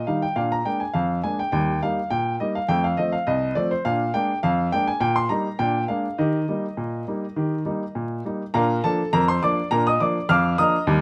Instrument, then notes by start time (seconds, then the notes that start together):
upright piano
0.07 D#3 G3 D#4 F5
0.22 G5
0.36 A#2 D4 F5
0.52 A#5
0.65 G#3 A#3 D4 G5
0.80 G#5
0.94 F2 F5
1.24 G#3 A#3 D4 G#5
1.39 G5
1.52 D#2 G3 G5
1.83 G3 A#3 D#4 F5
2.10 A#2 G5
2.40 G3 A#3 D#4 D#5
2.55 F5
2.69 F2 A3 G5
2.84 F5
2.97 F3 A3 C4 D#5
3.12 F5
3.27 C2 D#5
3.55 F3 A3 C4 D5
3.71 C5
3.85 A#2 D4 F5
4.14 G#3 A#3 D4 G5
4.43 F2 F5
4.72 G#3 A#3 D4 G5
4.88 G#5
5.00 A#2 G5
5.16 C6
5.29 G3 A#3 D#4 A#5
5.59 A#2 D4 G5
5.88 G#3 A#3 D4 F5
6.18 D#3 G4 D#5
6.49 G3 A#3 D#4
6.77 A#2
7.08 G3 A#3 D#4
7.36 D#3 G4
7.65 G3 A#3 D#4
7.95 A#2
8.25 G3 A#3 D#4
8.54 A#2 D4 A#4 F5 A#5
8.84 F3 A#3 D4 A4 A5
9.13 F2 A#4 A#5
9.28 C5 C6
9.43 F3 A#3 D4 D5 D6
9.71 A#2 D4 A#4 A#5
9.87 D#5 D#6
10.00 F3 A#3 D4 D5 D6
10.29 F2 F5 D6 F6
10.58 F3 A#3 D4 D#5 A#5 D#6
10.87 D#2 G3